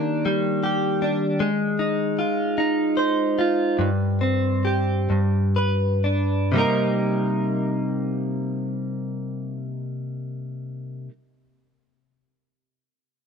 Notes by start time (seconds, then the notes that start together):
Already playing: D#3 G3 A#3 D4 G4
0.26 G3
0.64 G4
1.02 D4
1.40 G#3
1.79 D#4
2.19 F4
2.58 D#4
2.97 C5
3.39 F4
3.79 G2
4.21 C4
4.65 G4
5.10 G2
5.56 B4
6.04 D4
6.52 C3 G3 A#3
6.57 D#4 A#4